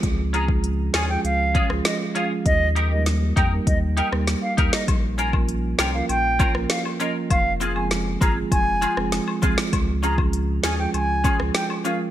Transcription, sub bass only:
\new Staff \with { instrumentName = "Sub bass" } { \clef bass \time 4/4 \key des \lydian \tempo 4 = 99 des,4. ees,8 des,8. des,16 r4 | ees,4. f,8 ees,8. ees,8 r16 ees,16 r16 | bes,,4. c,8 bes,,8. bes,,16 r4 | f,,4. g,,8 f,,8. f,,8 r16 c,16 r16 |
des,4. ees,8 des,8. des,16 r4 | }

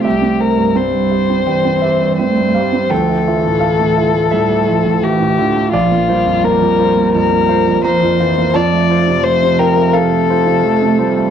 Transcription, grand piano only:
<<
  \new Staff \with { instrumentName = "Grand piano" } { \time 4/4 \key f \major \tempo 4 = 85 e''2 g''8 e''4 f''8 | g''4 f''4 e''2 | d''2~ d''8 r8 bes''4 | a''4. g''8 f''2 | }
  \new Staff \with { instrumentName = "Grand piano" } { \time 4/4 \key f \major c,16 c'16 <g' c''>16 g,16 c'16 g,16 <g' c''>16 c'16 g,16 c'16 <g' c''>16 g,16 c'16 g,16 <g' c''>16 c'16 | d,16 a16 <f' e''>16 a,16 a16 a,16 <f' e''>16 a16 a,16 a16 <f' e''>16 a,16 a16 a,16 <f' e''>16 a16 | bes,,16 bes16 <f' c''>16 f,16 bes16 f,16 <f' c''>16 bes16 f,16 bes16 <f' c''>16 f,16 bes16 f,16 <f' c''>16 bes16 | f,16 a16 <f' c''>16 c16 a16 c16 <f' c''>16 a16 c16 a16 <f' c''>16 c16 a16 c16 <f' c''>16 a16 | }
>>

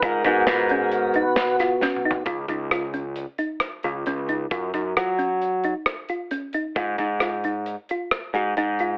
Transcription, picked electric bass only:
\new Staff \with { instrumentName = "Picked electric bass" } { \clef bass \time 5/4 \key gis \dorian \tempo 4 = 133 gis,8 gis,8 gis,2 r2 | cis,8 cis,2 r4 cis,8 cis,4 | fis,8 fis,8 fis2 r2 | gis,8 gis,2 r4 gis,8 gis,4 | }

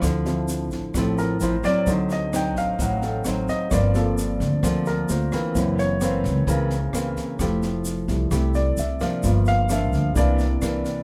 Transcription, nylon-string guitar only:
\new Staff \with { instrumentName = "Nylon-string guitar" } { \time 4/4 \key d \minor \tempo 4 = 130 << { <f c' e'>4. r8 <f c' e'>4 <f c' e'>8 <ges c'>8~ | <ges c'>4 <fis c' ees'>4 <fis c' ees'>4 <fis c' ees'>4 | <f bes c'>2 <f bes c'>4 r8 <e bes c'>8~ | <e bes c'>4 <fes bes c'>4 <fes bes c'>8 r8 <fes bes c'>4 |
<a e' g'>2 <a e' g'>4 r8 <f bes d'>8~ | <f bes d'>4 <f bes d'>4 <e bes d'>8 r8 <e bes d'>4 | } \\ { d2 a,2 | d2 a,2 | g,2 d2 | ges,2 des2 |
f2 c2 | g,2 c2 | } >> }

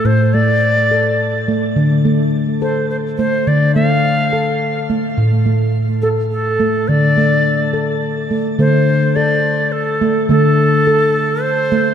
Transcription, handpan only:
\new Staff \with { instrumentName = "Handpan" } { \time 3/4 \key d \minor \tempo 4 = 106 << { r8 a4 a'4 a8 | r8 a4 a'4 a8 | r8 a4 a'4 a8 | r8 a4 a'4 a8 |
r8 a4 a'4 a8 | a4 a'4 r8 a8 | a4 a'4 r8 a8 | } \\ { a,2. | d2. | d2. | a,2. |
d2. | d2. | d2. | } >> }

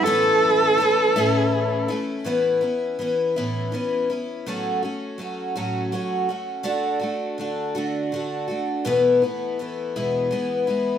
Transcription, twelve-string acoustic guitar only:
\new Staff \with { instrumentName = "Twelve-string acoustic guitar" } { \time 6/8 \key a \major \tempo 4. = 55 <a, e a cis' e'>4 <e a cis' e'>8 <a, e a cis' e'>4 <a cis' e'>8 | <a, e b cis' e'>8 <b cis' e'>8 <e b cis' e'>8 <a, e b cis' e'>8 <e b cis' e'>8 <b cis' e'>8 | <a, fis a cis' fis'>8 <a cis' fis'>8 <fis a cis' fis'>8 <a, fis a cis' fis'>8 <fis a cis' fis'>8 <a cis' fis'>8 | <d a d' fis'>8 <a d' fis'>8 <d a d' fis'>8 <d a d' fis'>8 <d a d' fis'>8 <a d' fis'>8 |
<e, b, e a b e'>8 <e a b e'>8 <e a b e'>8 <e, b, e gis b e'>8 <e gis b e'>8 <e gis b e'>8 | }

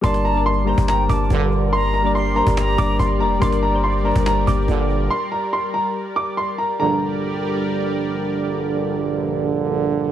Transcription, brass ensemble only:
\new Staff \with { instrumentName = "Brass ensemble" } { \clef bass \time 4/4 \key g \minor \tempo 4 = 142 r2. <g, bes, d>4 | r1 | r2. <g, bes, d>4 | r1 |
<bes,, g, d>1~ | <bes,, g, d>1 | }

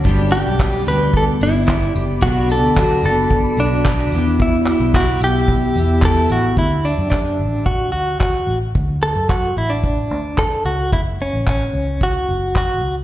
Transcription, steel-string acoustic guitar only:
\new Staff \with { instrumentName = "Steel-string acoustic guitar" } { \time 4/4 \key d \major \tempo 4 = 110 <g, d g b d' g'>8 <g b d' g'>8 <g b d' g'>8 <g b d' g'>4 <g b d' g'>8 <g b d' g'>4 | <b, fis b d' fis'>8 <b d' fis'>8 <fis b d' fis'>8 <b d' fis'>4 <b d' fis'>8 <fis b d' fis'>8 <e b e' g'>8~ | <e b e' g'>8 <b e' g'>8 <e b e' g'>8 <b e' g'>4 <b e' g'>8 <e b e' g'>4 | r1 |
r1 | r1 | }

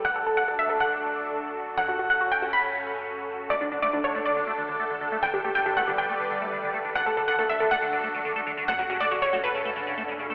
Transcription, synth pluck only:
\new Staff \with { instrumentName = "Synth pluck" } { \time 4/4 \key d \major \tempo 4 = 139 fis''16 a'16 a'16 fis''16 a'16 e''16 a'16 fis''2 r16 | fis''16 fis'16 fis'16 fis''16 fis'16 g''16 fis'16 b''2 r16 | d''16 d'16 d'16 d''16 d'16 cis''16 d'16 d''2 r16 | g''16 g'16 g'16 g''16 g'16 fis''16 g'16 g''2 r16 |
fis''16 a'16 a'16 fis''16 a'16 e''16 a'16 fis''2 r16 | fis''16 fis'16 fis'16 d''16 fis'16 cis''16 fis'16 b'2 r16 | }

